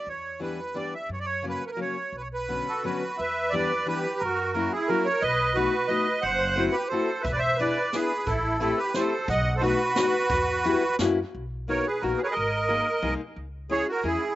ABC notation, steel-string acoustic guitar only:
X:1
M:3/4
L:1/8
Q:1/4=176
K:Bm
V:1 name="Steel-string acoustic guitar"
z2 [E,G,B,D] z [E,G,B,D] z | z2 [C,F,^A,C] z [C,F,A,C] z | z2 [D,F,B,C] z [D,F,B,C] z | [K:Em] z2 [E,G,B,D] z [E,G,B,D] z |
z2 [F,^A,^CE] z [F,A,CE] z | z2 [A,B,^DF] z [A,B,DF] z | z2 [A,CEF] z [A,CEF] z | z2 [B,DE^G] z [B,DEG] z |
z2 [A,CEG] z [A,CEG] z | z2 [A,B,^DF] z [A,B,DF] z | z2 [G,B,EF] z [^A,^CEF] z | [K:B] z2 [A,B,DF] z [A,B,DF] z |
z2 [G,A,DG] z [G,A,DG] z | z2 [G,CEG] z [G,CEG] z |]